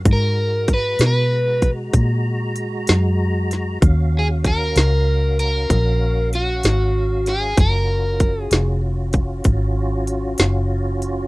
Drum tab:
HH |x-xx-xx-xx-x|x-xx-xx-xx-x|x-xx-xx-xx-x|
SD |---o-----o-o|---o-----o-o|---o-----o--|
BD |o-o--oo-----|o-o---o-----|o-o--oo-----|